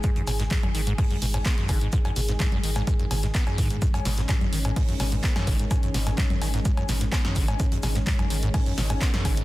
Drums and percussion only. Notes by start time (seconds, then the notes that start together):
0.03 kick, closed hi-hat, shaker
0.16 closed hi-hat
0.27 open hi-hat, cowbell, shaker
0.40 snare, closed hi-hat
0.50 kick, snare, clap, closed hi-hat, low conga, shaker
0.63 closed hi-hat, cowbell, low conga
0.75 open hi-hat, shaker
0.87 closed hi-hat
0.98 kick, closed hi-hat, open hi-hat, cowbell
1.11 closed hi-hat
1.22 open hi-hat, shaker
1.34 closed hi-hat, cowbell
1.45 kick, snare, clap, closed hi-hat, shaker
1.58 snare, closed hi-hat
1.69 kick, snare, open hi-hat, cowbell, shaker
1.81 closed hi-hat
1.92 kick, closed hi-hat, shaker
2.05 closed hi-hat, cowbell
2.16 open hi-hat, shaker
2.28 snare, closed hi-hat
2.40 kick, snare, clap, closed hi-hat, cowbell, low conga, shaker
2.52 closed hi-hat, low conga
2.64 open hi-hat, shaker
2.75 snare, closed hi-hat, cowbell
2.87 kick, closed hi-hat, shaker
2.99 closed hi-hat
3.11 snare, open hi-hat, cowbell, shaker
3.23 snare, closed hi-hat
3.35 kick, snare, clap, closed hi-hat, shaker
3.47 snare, closed hi-hat, cowbell
3.58 kick, snare, open hi-hat, shaker
3.70 closed hi-hat
3.82 kick, closed hi-hat, shaker
3.94 closed hi-hat, cowbell
4.05 snare, open hi-hat, shaker
4.18 snare, closed hi-hat
4.29 kick, snare, clap, closed hi-hat, cowbell, low conga, shaker
4.41 closed hi-hat, low conga
4.53 open hi-hat, shaker
4.65 closed hi-hat, cowbell
4.76 kick, closed hi-hat, open hi-hat
4.89 closed hi-hat
5.00 snare, open hi-hat, cowbell, shaker
5.12 closed hi-hat
5.24 kick, snare, clap, closed hi-hat, shaker
5.35 snare, closed hi-hat, cowbell
5.47 kick, snare, open hi-hat, shaker
5.59 closed hi-hat
5.71 kick, closed hi-hat, cowbell, shaker
5.83 closed hi-hat
5.94 snare, open hi-hat, shaker
6.07 snare, closed hi-hat, cowbell
6.18 kick, snare, clap, closed hi-hat, low conga, shaker
6.30 closed hi-hat, low conga
6.42 open hi-hat, cowbell, shaker
6.54 snare, closed hi-hat
6.65 kick, closed hi-hat, shaker
6.77 closed hi-hat, cowbell
6.89 snare, open hi-hat, shaker
7.01 snare, closed hi-hat
7.12 kick, snare, clap, closed hi-hat, cowbell, shaker
7.25 snare, closed hi-hat
7.35 kick, snare, open hi-hat, shaker
7.48 closed hi-hat, cowbell
7.59 kick, closed hi-hat, shaker
7.72 closed hi-hat
7.83 snare, open hi-hat, cowbell, shaker
7.95 snare, closed hi-hat
8.07 kick, snare, clap, closed hi-hat, low conga, shaker
8.19 closed hi-hat, cowbell, low conga
8.30 open hi-hat, shaker
8.43 closed hi-hat
8.54 kick, closed hi-hat, open hi-hat, cowbell
8.66 closed hi-hat
8.78 snare, open hi-hat, shaker
8.90 closed hi-hat, cowbell
9.01 kick, snare, clap, closed hi-hat, shaker
9.14 snare, closed hi-hat
9.25 kick, snare, open hi-hat, cowbell, shaker
9.37 closed hi-hat